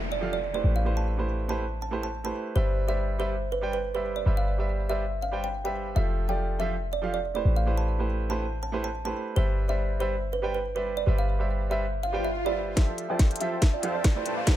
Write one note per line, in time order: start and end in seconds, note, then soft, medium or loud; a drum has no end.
0.00 0.62 F1 medium
0.00 downlifter medium
0.12 0.29 D5 medium
0.21 0.34 F3 medium
0.21 0.35 F4 medium
0.21 0.35 G4 medium
0.21 0.35 A4 medium
0.21 0.35 F5 medium
0.33 0.50 D5 medium
0.53 0.83 A3 medium
0.53 0.83 E4 medium
0.53 0.83 G4 medium
0.53 0.83 B4 medium
0.53 0.84 C5 medium
0.53 0.71 D5 medium
0.64 2.32 A1 medium
0.76 0.93 F5 medium
0.84 1.15 A3 medium
0.84 1.15 E4 medium
0.84 1.15 G4 medium
0.84 1.16 B4 medium
0.84 1.16 C5 medium
0.97 1.14 A5 medium
1.17 1.46 A3 medium
1.17 1.47 E4 medium
1.17 1.47 G4 medium
1.17 1.47 B4 medium
1.17 1.48 C5 medium
1.48 1.62 A3 medium
1.48 1.62 E4 medium
1.48 1.63 G4 medium
1.48 1.63 B4 medium
1.48 1.63 C5 medium
1.48 1.76 A5 medium
1.82 1.99 A5 medium
1.91 2.05 A3 medium
1.91 2.05 E4 medium
1.91 2.05 G4 medium
1.91 2.05 B4 medium
1.91 2.06 C5 medium
2.03 2.20 A5 medium
2.24 2.53 A3 medium
2.24 2.53 E4 medium
2.24 2.53 G4 medium
2.24 2.54 B4 medium
2.24 2.54 C5 medium
2.24 2.50 A5 medium
2.55 4.24 G1 medium
2.55 2.85 G3 medium
2.55 2.85 G4 medium
2.55 2.86 B4 medium
2.55 2.82 C5 loud
2.55 2.86 C5 medium
2.55 2.86 D5 medium
2.55 2.86 E5 medium
2.87 3.17 G3 medium
2.87 3.17 G4 medium
2.87 3.17 B4 medium
2.87 3.17 C5 medium
2.87 3.18 D5 medium
2.87 3.14 E5 medium
2.87 3.18 E5 medium
3.19 3.32 G3 medium
3.19 3.33 G4 medium
3.19 3.33 B4 medium
3.19 3.46 C5 medium
3.19 3.33 C5 medium
3.19 3.33 D5 medium
3.19 3.33 E5 medium
3.52 3.69 B4 medium
3.61 3.75 G3 medium
3.61 3.75 G4 medium
3.61 3.75 B4 medium
3.61 3.76 C5 medium
3.61 3.76 D5 medium
3.61 3.76 G5 medium
3.73 3.91 B4 medium
3.94 4.23 G3 medium
3.94 4.23 G4 medium
3.94 4.12 B4 medium
3.94 4.24 B4 medium
3.94 4.24 C5 medium
3.94 4.24 D5 medium
3.94 4.24 E5 medium
4.16 4.33 D5 medium
4.25 5.94 G1 medium
4.25 4.56 G3 medium
4.25 4.56 G4 medium
4.25 4.56 B4 medium
4.25 4.56 C5 medium
4.25 4.56 D5 medium
4.25 4.56 E5 medium
4.37 4.54 F5 medium
4.58 4.87 G3 medium
4.58 4.87 G4 medium
4.58 4.87 B4 medium
4.58 4.88 C5 medium
4.58 4.88 D5 medium
4.58 4.88 E5 medium
4.89 5.03 G3 medium
4.89 5.03 G4 medium
4.89 5.03 B4 medium
4.89 5.03 C5 medium
4.89 5.03 D5 medium
4.89 5.16 E5 medium
4.89 5.04 E5 medium
5.22 5.40 F5 medium
5.31 5.45 G3 medium
5.31 5.45 G4 medium
5.31 5.45 B4 medium
5.31 5.46 C5 medium
5.31 5.46 D5 medium
5.31 5.46 G5 medium
5.44 5.61 G5 medium
5.64 5.93 G3 medium
5.64 5.94 G4 medium
5.64 5.94 B4 medium
5.64 5.94 C5 medium
5.64 5.94 D5 medium
5.64 5.94 E5 medium
5.64 5.91 G5 medium
5.95 7.43 F1 medium
5.95 6.26 F3 medium
5.95 6.26 F4 medium
5.95 6.26 G4 medium
5.95 6.26 A4 medium
5.95 6.22 E5 loud
5.95 6.27 E5 medium
6.28 6.57 F3 medium
6.28 6.57 F4 medium
6.28 6.58 G4 medium
6.28 6.58 A4 medium
6.28 6.58 D5 medium
6.28 6.55 G5 medium
6.59 6.73 F3 medium
6.59 6.73 F4 medium
6.59 6.73 G4 medium
6.59 6.73 A4 medium
6.59 6.86 E5 medium
6.59 6.74 E5 medium
6.93 7.10 D5 medium
7.02 7.15 F3 medium
7.02 7.16 F4 medium
7.02 7.16 G4 medium
7.02 7.16 A4 medium
7.02 7.16 F5 medium
7.14 7.31 D5 medium
7.34 7.63 A3 medium
7.34 7.64 E4 medium
7.34 7.64 G4 medium
7.34 7.64 B4 medium
7.34 7.65 C5 medium
7.34 7.52 D5 medium
7.45 9.13 A1 medium
7.56 7.74 F5 medium
7.65 7.96 A3 medium
7.65 7.96 E4 medium
7.65 7.96 G4 medium
7.65 7.97 B4 medium
7.65 7.97 C5 medium
7.78 7.95 A5 medium
7.98 8.27 A3 medium
7.98 8.28 E4 medium
7.98 8.28 G4 medium
7.98 8.28 B4 medium
7.98 8.28 C5 medium
8.29 8.43 A3 medium
8.29 8.43 E4 medium
8.29 8.43 G4 medium
8.29 8.44 B4 medium
8.29 8.44 C5 medium
8.29 8.56 A5 medium
8.63 8.80 A5 medium
8.72 8.86 A3 medium
8.72 8.86 E4 medium
8.72 8.86 G4 medium
8.72 8.86 B4 medium
8.72 8.87 C5 medium
8.84 9.01 A5 medium
9.05 9.34 A3 medium
9.05 9.34 E4 medium
9.05 9.34 G4 medium
9.05 9.35 B4 medium
9.05 9.35 C5 medium
9.05 9.31 A5 medium
9.36 11.05 G1 medium
9.36 9.66 G3 medium
9.36 9.66 G4 medium
9.36 9.66 B4 medium
9.36 9.63 C5 loud
9.36 9.67 C5 medium
9.36 9.67 D5 medium
9.36 9.67 E5 medium
9.68 9.98 G3 medium
9.68 9.98 G4 medium
9.68 9.98 B4 medium
9.68 9.98 C5 medium
9.68 9.98 D5 medium
9.68 9.95 E5 medium
9.68 9.99 E5 medium
9.99 10.13 G3 medium
9.99 10.13 G4 medium
9.99 10.14 B4 medium
9.99 10.27 C5 medium
9.99 10.14 C5 medium
9.99 10.14 D5 medium
9.99 10.14 E5 medium
10.33 10.50 B4 medium
10.42 10.56 G3 medium
10.42 10.56 G4 medium
10.42 10.56 B4 medium
10.42 10.56 C5 medium
10.42 10.56 D5 medium
10.42 10.57 G5 medium
10.54 10.71 B4 medium
10.75 11.04 G3 medium
10.75 11.04 G4 medium
10.75 11.04 B4 medium
10.75 10.93 B4 medium
10.75 11.05 C5 medium
10.75 11.05 D5 medium
10.75 11.05 E5 medium
10.97 11.14 D5 medium
11.06 12.75 G1 medium
11.06 11.36 G3 medium
11.06 11.37 G4 medium
11.06 11.37 B4 medium
11.06 11.37 C5 medium
11.06 11.37 D5 medium
11.06 11.37 E5 medium
11.19 11.35 F5 medium
11.39 11.68 G3 medium
11.39 11.68 G4 medium
11.39 11.68 B4 medium
11.39 11.68 C5 medium
11.39 11.69 D5 medium
11.39 11.69 E5 medium
11.70 11.83 G3 medium
11.70 11.84 G4 medium
11.70 11.84 B4 medium
11.70 11.84 C5 medium
11.70 11.84 D5 medium
11.70 11.97 E5 medium
11.70 11.85 E5 medium
11.92 swell medium
12.03 12.20 F5 medium
12.12 12.26 G3 medium
12.12 12.26 G4 medium
12.12 12.26 B4 medium
12.12 12.27 C5 medium
12.12 12.27 D5 medium
12.12 12.27 G5 loud
12.24 12.42 E5 medium
12.45 12.74 G3 medium
12.45 12.74 G4 medium
12.45 12.75 B4 medium
12.45 12.75 C5 medium
12.45 12.72 D5 medium
12.45 12.75 D5 medium
12.45 12.75 E5 medium
12.76 13.07 F1 medium
12.76 13.06 F3 medium
12.76 13.07 F4 medium
12.76 12.91 F4 medium
12.76 13.07 G4 medium
12.76 13.07 A4 medium
12.76 12.91 C5 medium
12.76 12.91 E5 medium
12.76 13.03 E5 loud
12.76 13.07 E5 medium
12.76 12.91 G5 medium
12.76 12.91 A5 medium
12.76 kick medium
12.76 snare soft
12.76 closed hi-hat medium
12.76 riser medium
12.98 closed hi-hat medium
13.09 13.81 F1 medium
13.09 13.38 F3 medium
13.09 13.38 F4 medium
13.09 13.81 F4 medium
13.09 13.38 G4 medium
13.09 13.39 A4 medium
13.09 13.81 C5 medium
13.09 13.39 D5 medium
13.09 13.81 E5 medium
13.09 13.81 G5 medium
13.09 13.35 G5 medium
13.09 13.81 A5 medium
13.19 kick medium
13.19 snare soft
13.19 closed hi-hat medium
13.31 closed hi-hat soft
13.36 closed hi-hat medium
13.40 13.54 F3 medium
13.40 13.54 F4 medium
13.40 13.54 G4 medium
13.40 13.54 A4 medium
13.40 13.67 E5 medium
13.40 13.54 E5 medium
13.40 closed hi-hat medium
13.62 kick medium
13.62 snare soft
13.62 closed hi-hat medium
13.74 13.91 D5 medium
13.82 14.14 F2 loud
13.82 13.96 F3 medium
13.82 13.96 F4 medium
13.82 14.13 F4 loud
13.82 13.97 G4 medium
13.82 13.97 A4 medium
13.82 14.13 C5 medium
13.82 14.13 E5 medium
13.82 13.97 F5 medium
13.82 14.13 G5 medium
13.82 14.13 A5 loud
13.82 closed hi-hat medium
13.95 14.12 D5 medium
14.04 kick loud
14.04 snare soft
14.04 closed hi-hat medium
14.15 14.24 F2 medium
14.15 14.44 A3 medium
14.15 14.44 E4 medium
14.15 14.23 F4 medium
14.15 14.45 G4 medium
14.15 14.45 B4 medium
14.15 14.23 C5 medium
14.15 14.45 C5 medium
14.15 14.33 D5 medium
14.15 14.23 E5 medium
14.15 14.23 G5 medium
14.15 14.23 A5 loud
14.26 14.45 A1 loud
14.26 14.40 A3 medium
14.26 14.40 G4 medium
14.26 14.40 B4 medium
14.26 14.40 C5 medium
14.26 14.40 A5 medium
14.26 closed hi-hat medium
14.38 14.55 F5 medium
14.46 14.56 A3 medium
14.46 14.56 E4 medium
14.46 14.56 G4 medium
14.46 14.56 B4 medium
14.46 14.56 C5 medium
14.46 14.56 A5 medium
14.46 kick medium
14.46 snare medium
14.46 closed hi-hat medium